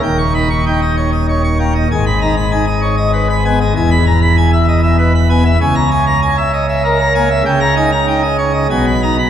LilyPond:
<<
  \new Staff \with { instrumentName = "Pipe organ" } { \time 3/4 \key gis \minor \tempo 4 = 97 g''16 cis'''16 b''16 cis'''16 g''16 dis''16 cis''16 dis''16 cis''16 cis'''16 g''16 dis''16 | gis''16 b''16 ais''16 b''16 gis''16 dis''16 cis''16 dis''16 b'16 b''16 gis''16 dis''16 | gis''16 b''16 ais''16 b''16 gis''16 e''16 dis''16 e''16 b'16 b''16 gis''16 e''16 | gis''16 ais''16 gis''16 ais''16 gis''16 e''16 dis''16 e''16 ais'16 ais''16 gis''16 e''16 |
g''16 ais''16 gis''16 ais''16 g''16 dis''16 cis''16 dis''16 gis''16 b''16 ais''16 b''16 | }
  \new Staff \with { instrumentName = "Pipe organ" } { \clef bass \time 3/4 \key gis \minor << { dis,8 dis'16 r16 dis'16 r4 r16 ais16 r16 | gis,8 dis'16 r16 dis'16 r4 r16 b16 r16 | e,2~ e,8 b16 r16 | cis2~ cis8 ais16 r16 |
cis8 dis'16 r16 dis'16 r8. b,8 dis'16 r16 | } \\ { dis,,2. | gis,,2. | e,,2. | cis,2. |
cis,2 b,,4 | } >> }
>>